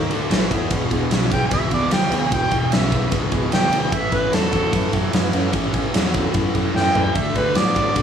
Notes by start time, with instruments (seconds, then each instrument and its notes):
0.10 fingered electric bass D2, distorted electric guitar D3 A3 D4, tonewheel organ A3 E4 A4, ride
0.30 fingered electric bass A1, distorted electric guitar A2 E3 A3, tonewheel organ A3 E4 A4, snare, ride
0.51 fingered electric bass E2, distorted electric guitar E3 B3 E4, tonewheel organ A3 E4 A4, kick, ride
0.71 fingered electric bass E1, distorted electric guitar E2 B2, tonewheel organ B3 E4 G#4, kick, ride
0.91 fingered electric bass E1, distorted electric guitar E2 B2, tonewheel organ B3 E4 G#4, kick, ride
1.11 fingered electric bass B1, distorted electric guitar E2 C#3, tonewheel organ B3 E4 F#4, snare, ride
1.31 distorted electric guitar E2 C#3, tonewheel organ B3 E4 G#4, harmonica G5, kick, ride
1.51 fingered electric bass C#2, distorted electric guitar E2 B2, tonewheel organ B3 E4 G#4, harmonica E5, kick, ride
1.71 fingered electric bass C#2, distorted electric guitar E2 B2, tonewheel organ B3 E4 G#4, harmonica D5, kick, ride
1.91 fingered electric bass D2, distorted electric guitar E2 B2, tonewheel organ B3 E4 G#4, harmonica G5, snare, ride
2.11 fingered electric bass D2, distorted electric guitar E2 B2, tonewheel organ B3 E4 G#4, ride
2.31 fingered electric bass E1, distorted electric guitar E2 B2, tonewheel organ B3 E4 F#4, harmonica G5, kick, ride
2.51 fingered electric bass E1, distorted electric guitar E2 B2, tonewheel organ B3 E4 G#4, kick, ride
2.72 fingered electric bass B1, distorted electric guitar E2 C#3, tonewheel organ B3 E4 G#4, harmonica E5, snare, ride
2.92 distorted electric guitar E2 C#3, tonewheel organ B3 E4 B4, kick, ride
3.10 fingered electric bass C#2, distorted electric guitar E2 B2, tonewheel organ B3 E4 G#4, kick, ride
3.30 fingered electric bass C#2, distorted electric guitar E2 B2, tonewheel organ B3 E4 G#4, kick, ride
3.52 fingered electric bass D2, distorted electric guitar E2 B2, tonewheel organ B3 E4 G#4, harmonica G5, snare, ride
3.71 fingered electric bass D2, distorted electric guitar E2 B2, tonewheel organ B3 E4 G#4, ride
3.91 fingered electric bass A1, distorted electric guitar A2 E3, tonewheel organ C#4 E4 A4, harmonica E5, kick, ride
4.12 fingered electric bass A1, distorted electric guitar A2 E3, tonewheel organ C#4 E4 A4, harmonica B4, kick, ride
4.32 fingered electric bass E2, distorted electric guitar A2 F#3, tonewheel organ C#4 E4 A4, harmonica A4, snare, ride
4.51 distorted electric guitar A2 F#3, tonewheel organ C#4 E4 A4, kick, ride
4.71 fingered electric bass F#2, distorted electric guitar A2 E3, tonewheel organ C#4 E4 A4, kick, ride
4.92 fingered electric bass F#2, distorted electric guitar A2 E3, tonewheel organ C#4 E4 A4, kick, ride
5.13 fingered electric bass F#2, distorted electric guitar A2 E3, tonewheel organ C#4 E4 B4, snare, ride
5.33 fingered electric bass F#2, distorted electric guitar A2 E3, tonewheel organ C#4 E4 A4, ride
5.53 fingered electric bass A1, distorted electric guitar A2 E3, tonewheel organ C#4 E4 A4, kick, ride
5.73 fingered electric bass A1, distorted electric guitar A2 E3, tonewheel organ C#4 E4 A4, kick, ride
5.93 fingered electric bass E2, distorted electric guitar A2 F#3, tonewheel organ C#4 E4 G#4, snare, ride
6.14 distorted electric guitar A2 F#3, tonewheel organ C#4 E4 A4, kick, ride
6.34 fingered electric bass F#2, distorted electric guitar A2 E3, tonewheel organ C#4 E4 A4, kick, ride
6.55 fingered electric bass F#2, distorted electric guitar A2 E3, tonewheel organ C#4 E4 A4, kick, ride
6.74 fingered electric bass F#2, distorted electric guitar A2 E3, tonewheel organ C#4 E4 A4, harmonica G5, snare
6.94 fingered electric bass F#2, distorted electric guitar A2 E3, tonewheel organ C#4 E4 A4, floor tom
7.14 fingered electric bass D2, distorted electric guitar D3 A3, tonewheel organ D4 F#4 A4, harmonica E5, kick, ride
7.35 fingered electric bass D2, distorted electric guitar D3 A3, tonewheel organ D4 F#4 G#4, harmonica B4, kick, ride
7.55 fingered electric bass A2, distorted electric guitar D3 B3, tonewheel organ D4 F#4 A4, harmonica D5, snare, ride
7.75 distorted electric guitar D3 B3, tonewheel organ D4 F#4 A4, kick, ride
7.94 fingered electric bass B2, distorted electric guitar D3 A3, tonewheel organ D4 F#4 A4, kick, ride